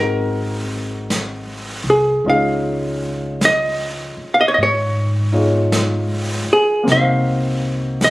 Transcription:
Already playing: upright bass G#1, grand piano G#3 C4 D#4 F#4 A#4, hollow-body jazz guitar A#4
1.10 brush sweep, snare, hi-hat pedal
1.84 upright bass C2
1.90 hollow-body jazz guitar G#4
2.24 upright bass C#2, grand piano G#3 C#4 D#4 F4 D#5, brush sweep
2.30 hollow-body jazz guitar F5
3.41 hollow-body jazz guitar D#5, brush sweep, snare, hi-hat pedal
4.17 muted upright bass stroke
4.34 hollow-body jazz guitar F5
4.41 hollow-body jazz guitar D#5
4.48 hollow-body jazz guitar C#5
4.54 upright bass G#2, hollow-body jazz guitar D#5, brush sweep
4.63 hollow-body jazz guitar C#5
5.32 grand piano D#4 F4 G#4 C#5
5.72 brush sweep, snare, hi-hat pedal
6.49 muted upright bass stroke
6.53 hollow-body jazz guitar G#4
6.83 upright bass C2, grand piano A#3 C4
6.88 grand piano D#4 F#4, brush sweep, snare
6.92 grand piano C5, hollow-body jazz guitar F5
8.01 hollow-body jazz guitar D#5, brush sweep, snare, hi-hat pedal

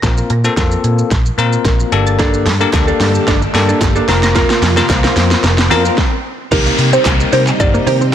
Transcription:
Already playing: riser
0.03 picked electric bass A#1, tine electric piano A#3 C4 F4 A#4, synth arpeggio sound A#4, kick, snare, closed hi-hat, shaker
0.17 shaker
0.30 picked electric bass A#2, synth arpeggio sound A#4, closed hi-hat, shaker
0.44 tine electric piano A#3 C4 F4 A4, shaker
0.57 picked electric bass F2, tine electric piano A#3 C4 F4 A4, synth arpeggio sound A#4, kick, snare, closed hi-hat, shaker
0.72 shaker
0.84 picked electric bass A#2, closed hi-hat, shaker
0.98 shaker
1.11 picked electric bass A#1, synth arpeggio sound A#4, kick, snare, closed hi-hat, shaker
1.26 shaker
1.38 picked electric bass A#2, tine electric piano A#3 C4 F4 A#4, synth arpeggio sound A#4, closed hi-hat, shaker
1.53 shaker
1.65 picked electric bass A#1, synth arpeggio sound A#4, kick, snare, closed hi-hat, shaker
1.80 shaker
1.92 picked electric bass G1, tine electric piano A#3 D4 G4 A4, synth arpeggio sound A4, closed hi-hat, shaker
2.07 synth arpeggio sound A6, shaker
2.19 string machine D3 A#3 G4 A4, clean electric guitar A#3 D4 A4, synth arpeggio sound A4, kick, snare, closed hi-hat, shaker
2.34 shaker
2.46 picked electric bass G2, synth arpeggio sound A4, muted clean electric guitar stroke, snare, open hi-hat, shaker
2.60 tine electric piano A#3 D4 G4 A#4, clean electric guitar A#3 D4 A4, shaker
2.73 picked electric bass D2, tine electric piano A#3 D4 G4 A4, synth arpeggio sound A4, kick, snare, clap, closed hi-hat, shaker
2.87 clean electric guitar A#3 D4 A4, shaker
3.00 picked electric bass G2, clean electric guitar A#3 D4 A4, snare, open hi-hat, shaker
3.15 shaker
3.27 picked electric bass G1, clean electric guitar A#3 D4 A4, synth arpeggio sound A4, kick, snare, closed hi-hat, shaker
3.42 muted clean electric guitar stroke, shaker
3.54 picked electric bass G2, tine electric piano A#3 D4 G4 A4, synth arpeggio sound A4, muted clean electric guitar stroke, snare, open hi-hat, shaker
3.69 clean electric guitar A#3 D4 A4, shaker
3.81 picked electric bass G1, synth arpeggio sound A4, kick, snare, clap, closed hi-hat, shaker
3.96 clean electric guitar A#3 D4 A4, shaker
4.08 picked electric bass F1, string machine C3 F3 F4, tine electric piano A#3 C4 F4 A#4, clean electric guitar C4 F4 A#4, synth arpeggio sound A#4, snare, open hi-hat, shaker
4.23 synth arpeggio sound A#6, muted clean electric guitar stroke, snare, shaker
4.35 clean electric guitar C4 F4 A#4, synth arpeggio sound A#4, kick, snare, closed hi-hat, shaker
4.50 snare, shaker
4.62 picked electric bass F2, synth arpeggio sound A#4, snare, open hi-hat, shaker
4.77 tine electric piano A#3 C4 F4 A#4, clean electric guitar C4 F4 A#4, snare, shaker
4.89 picked electric bass C2, tine electric piano A#3 C4 F4 C5, synth arpeggio sound A#4, kick, snare, clap, closed hi-hat, shaker
5.04 clean electric guitar C4 F4 A#4, snare, shaker
5.16 picked electric bass F2, clean electric guitar C4 F4 A#4, snare, open hi-hat, shaker
5.31 muted clean electric guitar stroke, snare, shaker
5.43 picked electric bass F1, synth arpeggio sound A#4, muted clean electric guitar stroke, snare, closed hi-hat, shaker
5.58 muted clean electric guitar stroke, snare, shaker
5.70 picked electric bass F2, tine electric piano A#3 C4 F4 A#4, clean electric guitar C4 F4 A#4, synth arpeggio sound A#4, open hi-hat, shaker
5.85 clean electric guitar C4 F4 A#4, shaker
5.98 kick, snare
6.52 picked electric bass C2, string machine C3 G3 A#3 D#4, synth arpeggio sound D#3, tine electric piano A#3 C4 D#4 G4 A#4, clean electric guitar D#4 G4 A#4, synth pluck A#4, kick, closed hi-hat, crash, downlifter, shaker
6.66 synth arpeggio sound A#3, shaker
6.79 picked electric bass C3, open hi-hat, shaker
6.93 synth arpeggio sound C4, clean electric guitar D#4 G4 A#4, synth pluck C5, shaker
7.05 picked electric bass C2, tine electric piano A#3 C4 D#4 G4 A#4, kick, snare, clap, closed hi-hat, shaker
7.20 muted clean electric guitar stroke, shaker
7.33 picked electric bass C3, clean electric guitar D#4 G4 A#4, synth pluck C5, open hi-hat, shaker
7.47 muted clean electric guitar stroke, clap, shaker
7.60 picked electric bass G1, tine electric piano A#3 C4 D#4 G4 A#4, synth pluck D5, muted clean electric guitar stroke, kick, closed hi-hat, shaker
7.74 synth arpeggio sound A#3, muted clean electric guitar stroke, shaker
7.87 picked electric bass C3, synth arpeggio sound D#3, clean electric guitar D#4 G4 A#4, synth pluck C5, open hi-hat, shaker
8.01 synth arpeggio sound C4, muted clean electric guitar stroke, shaker

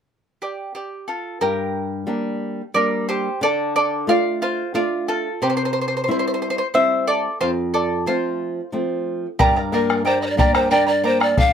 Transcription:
0.42 charango G4 D5
0.75 charango G4 D5
1.08 charango F4 A4
1.41 nylon-string guitar G2, charango G4 A#4
2.07 nylon-string guitar G3 A#3 D4
2.74 nylon-string guitar G3 A#3 D4, charango A#4 D5
3.09 charango G4 C5
3.41 nylon-string guitar D3, charango A4 D5
3.76 charango A4 D5
4.07 nylon-string guitar A3 D4 F4, charango D5 F5
4.42 charango F4 C5
4.74 nylon-string guitar A3 D4 F4, charango F4 D5
5.08 charango F4 A4
5.42 nylon-string guitar C3, charango G4 C5
5.50 charango C5
5.57 charango C5
5.65 charango C5
5.73 charango C5
5.81 charango C5
5.88 charango C5
5.97 charango C5
6.04 charango C5
6.08 nylon-string guitar G3 C4 E4, charango C5
6.19 charango C5
6.27 charango C5
6.34 charango C5
6.42 charango C5
6.50 charango C5
6.58 charango C5
6.74 nylon-string guitar G3 C4 E4, charango C5 E5
7.07 charango A4 D5
7.41 nylon-string guitar F2, charango F4 C5
7.74 charango A4 D5
8.06 nylon-string guitar F3 A3 C4, charango F4 C5
8.72 nylon-string guitar F3 A3 C4
9.39 nylon-string guitar G2, charango G4 A#4 D5 G5 A#5, bombo rim, bombo low
9.56 charango A#4 D5 A#5
9.72 nylon-string guitar A#3, pan flute A#4, charango A#4 D5 G5 A#5, bombo rim
9.90 charango A#4 D5 A#5, bombo rim
10.05 nylon-string guitar G3, charango A#4 D5 G5 A#5, pan flute C5, bombo rim
10.22 charango A#4 D5 A#5, pan flute D5
10.27 pan flute C5 D5
10.37 nylon-string guitar A#3, charango G4 A#4 D5 G5 A#5, pan flute D5, bombo low
10.55 charango G4 A#4 D5 G5 A#5, pan flute C5, bombo rim
10.71 nylon-string guitar D4, charango G4 A#4 D5 G5 A#5, pan flute D5
10.87 charango A#4 D5 A#5, pan flute D5
11.04 nylon-string guitar A#3, charango A#4 D5 G5 A#5, pan flute C5
11.20 charango A#4 D5 A#5, pan flute D5, bombo rim
11.37 nylon-string guitar D3, charango A4 D5 F5, pan flute F5, bombo rim, bombo low

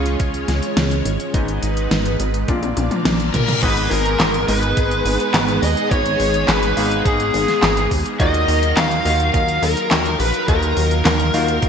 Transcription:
Already playing: analog synth bass C#2, electric grand piano C#3 C#4 F4 G#4 F5, string machine G#3 C#4 F4 C#5
0.06 closed hi-hat
0.20 analog synth bass C#2, kick, closed hi-hat
0.34 closed hi-hat
0.48 analog synth bass C#2, snare, closed hi-hat
0.63 closed hi-hat
0.77 analog synth bass C#2, snare, closed hi-hat
0.91 closed hi-hat
1.05 analog synth bass G#1, closed hi-hat
1.20 closed hi-hat
1.34 analog synth bass G#1, electric grand piano G#2 B3 D#4 G#4 D#5, string machine B3 D#4 B4, kick, closed hi-hat
1.48 closed hi-hat
1.63 analog synth bass G#1, closed hi-hat
1.77 closed hi-hat
1.91 analog synth bass G#1, snare, closed hi-hat
2.05 closed hi-hat
2.20 analog synth bass G#1, closed hi-hat
2.34 closed hi-hat
2.48 analog synth bass A#1, electric grand piano A#2 A#3 D4 F4 D5, string machine A#3 D4 F4 D5, kick, closed hi-hat, high tom, reverse cymbal
2.63 closed hi-hat, high tom
2.77 analog synth bass A#1, closed hi-hat, high tom
2.91 closed hi-hat, mid tom
3.05 analog synth bass A#1, snare, closed hi-hat, mid tom
3.20 closed hi-hat
3.34 analog synth bass A#2, lead electric guitar A#4, kick, closed hi-hat, mid tom
3.48 closed hi-hat, mid tom
3.62 analog synth bass G#1, electric grand piano G#2 B3 D#4 G#4 D#5, string machine G#3 B3 D#4 G#4, digital synth lead B4, lead electric guitar B4, kick, closed hi-hat, crash
3.77 closed hi-hat
3.91 analog synth bass G#1, digital synth lead A#4, lead electric guitar A#4, open hi-hat
4.06 closed hi-hat
4.20 analog synth bass G#1, snare, clap, closed hi-hat
4.34 closed hi-hat
4.48 analog synth bass G#1, electric grand piano G#2 B3 D#4 G#4 D#5, digital synth lead B4, lead electric guitar B4, open hi-hat
4.63 closed hi-hat
4.77 analog synth bass G#1, kick, closed hi-hat
4.91 closed hi-hat
5.05 analog synth bass G#1, open hi-hat
5.20 closed hi-hat
5.34 analog synth bass G#1, snare, clap, closed hi-hat
5.48 closed hi-hat
5.62 analog synth bass D#2, digital synth lead D#5, lead electric guitar D#5, open hi-hat
5.77 closed hi-hat
5.91 analog synth bass G#1, electric grand piano G#2 B3 D#4 G#4 D#5, lead electric guitar C#5, digital synth lead C#5, kick, closed hi-hat
6.06 closed hi-hat
6.20 analog synth bass G#1, open hi-hat
6.34 closed hi-hat
6.48 analog synth bass G#1, lead electric guitar B4, digital synth lead B4, snare, clap, closed hi-hat
6.63 closed hi-hat
6.77 analog synth bass G#1, electric grand piano G#2 B3 D#4 G#4 F5, open hi-hat
6.91 closed hi-hat
7.05 analog synth bass G#1, lead electric guitar G#4, digital synth lead G#4, kick, closed hi-hat
7.20 closed hi-hat
7.34 analog synth bass G#1, open hi-hat
7.48 snare, closed hi-hat
7.63 analog synth bass G#1, snare, clap, closed hi-hat
7.77 closed hi-hat
7.91 analog synth bass D#2, kick, open hi-hat
8.06 closed hi-hat
8.20 analog synth bass D#2, electric grand piano D#3 A#3 F4 F#4 D#5, string machine F#3 D#4 A#4 F5, lead electric guitar D#5, digital synth lead D#5, kick, closed hi-hat
8.34 closed hi-hat
8.48 analog synth bass D#2, open hi-hat
8.63 closed hi-hat
8.77 analog synth bass D#2, lead electric guitar F5, digital synth lead F5, snare, clap, closed hi-hat
8.91 closed hi-hat
9.05 analog synth bass D#2, electric grand piano D#3 A#3 F4 F#4 D#5, open hi-hat
9.20 closed hi-hat
9.34 analog synth bass D#2, digital synth lead F5, lead electric guitar F5, kick, closed hi-hat
9.48 closed hi-hat
9.62 analog synth bass D#2, lead electric guitar A#4, digital synth lead A#4, open hi-hat
9.77 closed hi-hat
9.91 analog synth bass D#2, snare, clap, closed hi-hat
10.05 closed hi-hat
10.20 analog synth bass A#1, lead electric guitar B4, digital synth lead B4, open hi-hat
10.34 closed hi-hat
10.48 analog synth bass D#2, electric grand piano D#3 A#3 F4 F#4 D#5, lead electric guitar A#4, digital synth lead A#4, kick, closed hi-hat
10.63 closed hi-hat
10.77 analog synth bass D#2, open hi-hat
10.91 closed hi-hat
11.05 analog synth bass D#2, lead electric guitar A#4, digital synth lead A#4, snare, clap, closed hi-hat
11.20 closed hi-hat
11.34 analog synth bass D#2, electric grand piano D#3 A#3 F4 F#4 F5, open hi-hat
11.48 closed hi-hat
11.62 analog synth bass D#2, kick, closed hi-hat

